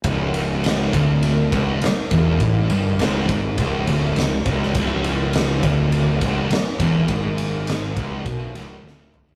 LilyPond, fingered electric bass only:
\new Staff \with { instrumentName = "Fingered electric bass" } { \clef bass \time 4/4 \key cis \minor \tempo 4 = 102 cis,,4. d,,4 cis,,8 r8 e,,8 | a,,8 g,,8 cis,,8 gis,,8 cis,,8 d,,8 cis,,8 cis,,8 | cis,,4. d,,4 cis,,8 r8 e,,8 | gis,,4. cis,,8 b,,8 cis,,8 d,,4 | }